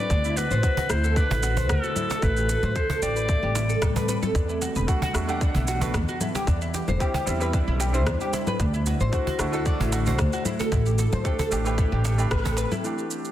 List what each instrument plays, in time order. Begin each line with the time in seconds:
Already playing: ambient pad E4, clarinet D5
0.09 upright bass D2, ambient pad D3 A3 F#4, oud D4, kick, shaker
0.24 oud E4, shaker
0.37 oud F#4, clarinet B4, cajon slap, shaker
0.51 upright bass A1, oud C5, shaker
0.63 oud F#4, kick, shaker
0.77 oud F#4, cajon bass
0.90 upright bass D2, oud E4, clarinet C5, cross-stick, shaker
1.04 oud A4, shaker
1.16 oud D4, clarinet B4, kick, shaker
1.30 upright bass A1, oud E4, cajon bass
1.43 oud F#4, cajon slap, shaker
1.57 oud C5, cajon bass, shaker
1.69 upright bass D2, oud F#4, clarinet A4, kick, cross-stick, shaker
1.84 oud F#4, shaker
1.96 oud E4, low conga, shaker
2.10 oud A4, cajon slap, shaker
2.22 upright bass A1, ambient pad G3 C4, oud E4, clarinet B4, kick, shaker
2.37 oud G4, shaker
2.49 oud A4, cajon slap, shaker
2.63 upright bass A2, oud C5, low conga, shaker
2.76 oud A4, clarinet C5, kick, shaker
2.90 oud A4, cajon bass
3.02 upright bass A1, oud G4, clarinet D5, cajon slap, shaker
3.16 oud B4, shaker
3.28 oud E4, kick, shaker
3.43 upright bass A1, oud G4
3.55 oud E4, cajon slap, shaker
3.69 oud A4, shaker
3.82 upright bass A1, oud A4, kick, cross-stick, shaker
3.96 oud B4, cajon bass, cajon slap, shaker
4.08 oud B4, cajon slap, shaker
4.22 oud A4, low conga, shaker
4.35 upright bass E2, ambient pad E3 B3 F#5, oud D4, kick, shaker
4.49 oud E4, shaker
4.62 oud F#4, cajon slap, shaker
4.76 upright bass E1, oud B4, shaker
4.87 felt piano A3 D4 F#4, oud F#4, kick, shaker
5.02 oud F#4, cajon bass
5.13 upright bass E2, felt piano A3 D4 F#4, oud E4, cross-stick, shaker
5.27 felt piano A3 D4 F#5, oud G4, shaker
5.41 oud D4, kick, shaker
5.55 upright bass B1, oud E4, cajon bass
5.68 oud F#4, cajon slap, shaker
5.81 felt piano A3 D4 F#4, oud B4, cajon bass, shaker
5.94 upright bass E2, oud D4, kick, cross-stick, shaker
6.08 oud F#4, shaker
6.21 oud E4, low conga, shaker
6.35 oud G4, cajon slap, shaker
6.47 upright bass E2, ambient pad G3 C4 D4 E4, oud D4, kick, shaker
6.62 oud E4, shaker
6.74 oud G4, cajon slap, shaker
6.88 upright bass E1, oud C5, low conga, shaker
6.99 felt piano G3 C4 E4, oud G4, kick, shaker
7.14 oud G4, cajon bass
7.26 upright bass E2, felt piano G3 C4 E4, oud E4, cajon slap, shaker
7.40 felt piano G3 C4 E4, oud B4, shaker
7.53 oud D4, kick, shaker
7.68 upright bass B1, oud E4
7.80 oud G4, cajon slap, shaker
7.93 felt piano G3 C4 E4, oud C5, shaker
8.07 upright bass E2, oud D4, kick, cross-stick, shaker
8.21 oud G4, cajon slap, shaker
8.33 oud E4, cajon slap, shaker
8.47 oud B4, low conga, shaker
8.60 upright bass D2, ambient pad D3 A3 F#4, oud D4, kick, shaker
8.74 oud E4, shaker
8.86 oud F#4, cajon slap, shaker
9.00 upright bass A1, oud C5, shaker
9.12 felt piano A3 D4 F#4, oud F#4, kick, shaker
9.27 oud F#4, cajon bass
9.38 upright bass D2, felt piano A3 D4 F#4, oud E4, cross-stick, shaker
9.52 felt piano A3 D4 F#4, oud A4, shaker
9.66 oud D4, kick, shaker
9.80 upright bass A1, oud E4, cajon bass
9.92 oud F#4, cajon slap, shaker
10.06 felt piano A3 D4 F#4, oud C5, cajon bass, shaker
10.19 upright bass D2, oud D4, kick, cross-stick, shaker
10.33 oud F#4, shaker
10.45 oud E4, low conga, shaker
10.59 oud A4, cajon slap, shaker
10.72 upright bass A1, ambient pad C4 G4, oud E4, kick, shaker
10.86 oud G4, shaker
10.98 oud A4, cajon slap, shaker
11.13 upright bass A2, oud C5, low conga, shaker
11.24 felt piano A3 D4 G4, oud A4, kick, shaker
11.39 oud A4, cajon bass, shaker
11.51 upright bass A1, felt piano A3 D4 G4, oud G4, cajon slap, shaker
11.65 felt piano A3 D4 G4, oud B4, shaker
11.78 oud E4, kick, shaker
11.92 upright bass A1, oud G4
12.05 oud A4, cajon slap, shaker
12.17 felt piano A3 D4 G4, oud B4, shaker
12.31 upright bass A1, oud B4, kick, cross-stick, shaker
12.45 oud A4, cajon bass, cajon slap, shaker
12.57 oud B4, cajon slap, shaker
12.72 oud E4, low conga, shaker
12.82 felt piano E3 A3 D4 G4, ambient pad E3 B3 G4 F#5, singing bowl E4, shaker
12.98 shaker
13.11 shaker
13.25 shaker